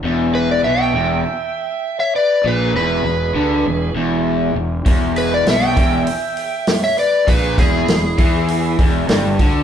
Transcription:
<<
  \new Staff \with { instrumentName = "Electric slide guitar" } { \time 4/4 \key e \mixolydian \tempo 4 = 99 r8 b'16 d''16 e''16 g''2 e''16 d''8 | b'8 b'2 r4. | r8 b'16 d''16 e''16 g''2 e''16 d''8 | b'8 gis'2 r4. | }
  \new Staff \with { instrumentName = "Lead electric guitar" } { \time 4/4 \key e \mixolydian r8 gis'16 b'16 b'16 e''2 cis''16 b'8 | gis'8 gis'2 r4. | r8 gis'16 b'16 b'16 e''2 cis''16 b'8 | gis'8 e'2 r4. | }
  \new Staff \with { instrumentName = "Overdriven electric guitar" } { \clef bass \time 4/4 \key e \mixolydian e,4 b,8 e,8 r2 | ais,8 e,8 e,8 d8 e,8 e,4 e,8 | e,4 b,8 e,8 r2 | ais,8 e,8 e,8 e4 e,8 g,8 d8 | }
  \new Staff \with { instrumentName = "Fingered electric bass" } { \clef bass \time 4/4 \key e \mixolydian e,,4 b,,8 e,,8 r2 | ais,,8 e,,8 e,,8 d,8 e,,8 e,,4 e,,8 | e,,4 b,,8 e,,8 r2 | ais,,8 e,,8 e,,8 e,4 e,,8 g,,8 d,8 | }
  \new DrumStaff \with { instrumentName = "Drums" } \drummode { \time 4/4 r4 r4 r4 r4 | r4 r4 r4 r4 | <hho bd>8 hho8 <hho sn>8 <hho bd>8 hho8 hho8 <hho sn>8 hho8 | <hho bd>8 <hho bd>8 <hho sn>8 <hho bd>8 hho8 <hho bd>8 <hho sn>8 <hho bd>8 | }
>>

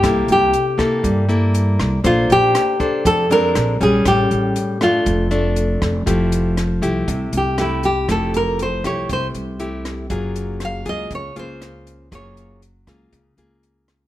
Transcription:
<<
  \new Staff \with { instrumentName = "Nylon-string guitar" } { \time 4/4 \key f \major \tempo 4 = 119 g'8 g'2 r4. | f'8 g'4. a'8 bes'4 aes'8 | g'4. f'2 r8 | r2 r8 g'8 e'8 g'8 |
a'8 bes'8 c''8 des''8 c''8 r4. | r4 f''8 ees''8 des''8 c''4. | des''4 r2. | }
  \new Staff \with { instrumentName = "Nylon-string guitar" } { \time 4/4 \key f \major << { <bes e' a'>4 r8 <bes e' a'>4 <bes e' a'>4. | <d' a' c''>4. <d' a' c''>4 <aes c' d'>4 <g des'>8~ | <g des'>4. <a d'>4 <a d'>4. | <a e' g'>4 r8 <a e' g'>4. <a e' g'>8 r8 |
<a e' g'>4. <a e' g'>4. <a e' g'>4 | <bes f' aes'>4. <bes f' aes'>4 <bes f' aes'>4. | <bes f' aes'>4 r8 <bes f' aes'>4 <bes f' aes'>4. | } \\ { c2 g2 | bes2 f4 r4 | a,2 f,2 | f2 c2 |
f2 c2 | ges2 des2 | ges2 des2 | } >> }
  \new Staff \with { instrumentName = "Upright bass" } { \clef bass \time 4/4 \key f \major c,8 c,8 r4 g,4. c,8 | bes,,8 bes,,8 r4 f,4 bes,,8 bes,,8 | a,,8 a,,8 r4 f,,4. f,,8 | f,,4. c,8 c,8 c,4. |
f,,4. c,8 c,8 c,4. | ges,,4. des,8 des,8 des,4. | ges,,4. des,8 des,8 des,4. | }
  \new DrumStaff \with { instrumentName = "Drums" } \drummode { \time 4/4 <hh bd ss>8 hh8 hh8 <hh bd ss>8 <hh bd>8 hh8 hh8 <hh ss>8 | <hh bd>8 hh8 <hh ss>8 <hh bd>8 <hh bd>8 hh8 <hh ss>8 hh8 | <hh bd ss>8 hh8 hh8 <hh ss>8 <hh bd>8 hh8 hh8 <hh bd ss>8 | <hh bd>8 hh8 <hh ss>8 hh8 <hh bd>8 hh8 <hh ss>8 hh8 |
<hh bd ss>8 hh8 hh8 <hh ss>8 <hh bd>8 hh8 hh8 <hh ss>8 | <hh bd>8 hh8 <hh ss>8 hh8 <hh bd>8 hh8 <hh ss>8 hh8 | <hh bd ss>8 hh8 hh8 <hh bd ss>8 <hh bd>8 hh8 hh8 <hh ss>8 | }
>>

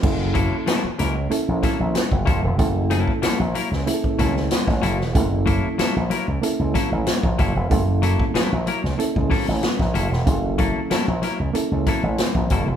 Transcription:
<<
  \new Staff \with { instrumentName = "Clean electric guitar" } { \time 4/4 \key fis \mixolydian \tempo 4 = 94 r8 <fis ais e' a'>8 <fis ais e' a'>8 <fis ais e' ais'>16 r8. <fis ais e' a'>16 r8. <fis ais e' a'>16 r16 | r8 <fis ais e' a'>8 <fis ais e' a'>8 <fis ais e' ais'>16 r8. <fis ais e' a'>16 r8. <fis ais e' a'>8 | r8 <fis ais e' a'>8 <fis ais e' a'>8 <fis ais e' ais'>16 r8. <fis ais e' a'>16 r8. <fis ais e' a'>16 r16 | r8 <fis ais e' a'>8 <fis ais e' a'>8 <fis ais e' ais'>16 r8. <fis ais e' a'>16 r8. <fis ais e' a'>16 r16 |
r8 <fis ais e' a'>8 <fis ais e' a'>8 <fis ais e' ais'>16 r8. <fis ais e' a'>16 r8. <fis ais e' a'>16 r16 | }
  \new Staff \with { instrumentName = "Reed electric piano" } { \time 4/4 \key fis \mixolydian <ais cis' e' a'>4~ <ais cis' e' a'>16 r8. <ais cis' e' a'>4~ <ais cis' e' a'>16 r8. | <a ais cis' e' a'>4~ <a ais cis' e' a'>16 r8. <ais cis' e' gis' a'>4~ <ais cis' e' gis' a'>16 r8. | <a ais cis' e' a'>4~ <a ais cis' e' a'>16 r8. <ais cis' e' a'>4~ <ais cis' e' a'>16 r8. | <a ais cis' e' a'>4~ <a ais cis' e' a'>16 r8. <ais cis' e' a'>4~ <ais cis' e' a'>16 r8. |
<ais cis' e' gis' a'>4~ <ais cis' e' gis' a'>16 r8. <ais cis' e' a'>4~ <ais cis' e' a'>16 r8. | }
  \new Staff \with { instrumentName = "Slap bass" } { \clef bass \time 4/4 \key fis \mixolydian fis,,8. r8. cis,8 r16 ais,,16 r16 ais,,16 r16 fis,,16 fis,,16 e,,16 | fis,,8. r8 ais,,16 r16 cis,16 r8 cis,8 r16 a,,16 fis,,16 e,,16 | fis,,8. r8 ais,,16 r16 cis,16 r16 cis,16 r16 a,,16 r16 ais,,16 fis,,16 e,,16 | fis,,8. r8 ais,,16 r16 cis,16 r16 cis,16 r16 a,,16 r16 ais,,16 fis,,16 e,,16 |
fis,,8. r8 ais,,16 r16 cis,16 r16 cis,16 r16 a,,16 r16 ais,,16 fis,,16 e,,16 | }
  \new DrumStaff \with { instrumentName = "Drums" } \drummode { \time 4/4 <cymc bd>8 <hh bd>8 <hh sn>8 <hh sn>8 hh8 <hh bd sn>8 <hh sn>16 bd16 <hh bd>8 | <hh bd>8 hh16 bd16 <hh sn>8 hh16 sn16 hh16 bd16 <hh bd sn>16 sn16 <hh sn>16 <bd sn>16 hh16 sn16 | <hh bd>8 <hh bd>8 <hh sn>8 <hh sn>8 hh8 <hh bd sn>8 <hh sn>16 bd16 <hh bd>8 | <hh bd>8 hh16 bd16 <hh sn>8 hh16 sn16 hh16 bd16 <hho bd sn>16 sn16 <hh sn>16 <bd sn>16 hh16 sn16 |
<hh bd>8 <hh bd>8 <hh sn>8 <hh sn>8 hh8 <hh bd sn>8 <hh sn>16 bd16 <hh bd>8 | }
>>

